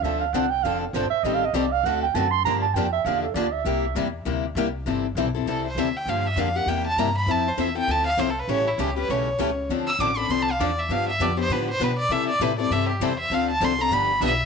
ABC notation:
X:1
M:4/4
L:1/8
Q:"Swing" 1/4=199
K:Cmix
V:1 name="Clarinet"
e f _g =g f A c e | (3_e f e d f ^f g a c' | b a g e f A d e- | e2 z6 |
[K:C] z8 | z8 | z8 | z8 |
z8 | z8 | z8 | z8 |]
V:2 name="Violin"
z8 | z8 | z8 | z8 |
[K:C] z4 A c e g | f e f ^f g a _b =b | a c e g a f (3c A B | ^c E G B c4 |
z e' d' b (3c' a f d e | f e d c B c B d | e d B d e G c e | f a c' _b =b2 e2 |]
V:3 name="Steel-string acoustic guitar"
[D,F,CDA] z [D,F,CDA] z [D,F,CDA] z [D,F,CDA] z | [_E,G,CGA] z [E,G,CGA] z [D,A,C^FA] z [D,A,CFA] z | [D,F,B,DG] z [D,F,B,DG] z [D,F,B,DG] z [D,F,B,DG] z | [C,G,B,EG] z [C,G,B,EG] z [C,G,B,EG] z [C,G,B,EG] z |
[K:C] [C,E,G,CEA] z [C,E,G,CEA] [G,CEA] [C,E,G,CEA] z [C,E,G,CEA] z | [D,F,_B,DG] z [D,F,B,DG] [B,DG] [C,G,B,EG] z [C,G,B,EG] z | [F,CEA] z [F,CEA] [CEA] [F,CEA] z [F,CEA] z | [^C,E,A,^CG] z [C,E,A,CG] [A,CG] [C,E,A,CG] z [C,E,A,CG] z |
[D,F,CDA] z [D,F,CDA] [CDA] [D,F,CDA] z [D,F,CDA] z | [D,F,B,DG] z [D,F,B,DG] [B,DG] [D,F,B,DG] z [D,F,B,DG] z | [C,E,G,CEA] z [C,E,G,CEA] [G,CEA] [C,E,G,CEA] z [C,E,G,CEA] z | [D,F,CDA] z [D,F,CDA] [CDA] [D,F,B,DG] z [D,F,B,DG] z |]
V:4 name="Steel-string acoustic guitar"
[D,F,CDA] z [D,F,CDA] z [D,F,CDA] z [D,F,CDA] z | [_E,G,CGA] z [E,G,CGA] z [D,A,C^FA] z [D,A,CFA] z | [D,F,B,DG] z [D,F,B,DG] z [D,F,B,DG] z [D,F,B,DG] z | [C,G,B,EG] z [C,G,B,EG] z [C,G,B,EG] z [C,G,B,EG] z |
[K:C] [C,E,G,CEA] z [C,E,G,CEA] z [C,E,G,CEA] z [C,E,G,CEA] z | [D,F,_B,DG] z [D,F,B,DG] z [C,G,B,EG] z [C,G,B,EG] z | [F,CEA] z [F,CEA] z [F,CEA] z [F,CEA] z | [E,G,^CEA] z [E,G,CEA] z [E,G,CEA] z [E,G,CEA] z |
[D,F,CDA] z [D,F,CDA] z [D,F,CDA] z [D,F,CDA] z | [D,F,B,DG] z [D,F,B,DG] z [D,F,B,DG] z [D,F,B,DG] z | [C,E,G,CEA] z [C,E,G,CEA] z [C,E,G,CEA] z [C,E,G,CEA] z | [D,F,CDA] z [D,F,CDA] z [D,F,B,DG] z [D,F,B,DG] z |]
V:5 name="Upright bass" clef=bass
D,,2 C,,2 F,,,2 G,,, z | A,,,2 C,,2 D,,2 ^F,,2 | G,,2 F,,2 E,,2 D,,2 | C,,2 E,,2 D,,2 C,,2 |
[K:C] G,,,2 B,,,2 C,,2 D,,2 | G,,2 F,,2 E,,2 G,,2 | F,,2 E,,2 D,,2 C,,2 | A,,,2 ^C,,2 B,,,2 C,,2 |
D,,2 A,,,2 C,,2 E,,2 | G,,2 F,,2 A,,2 B,,2 | C,2 A,,2 G,,2 E,,2 | D,,2 C,,2 G,,,2 B,,,2 |]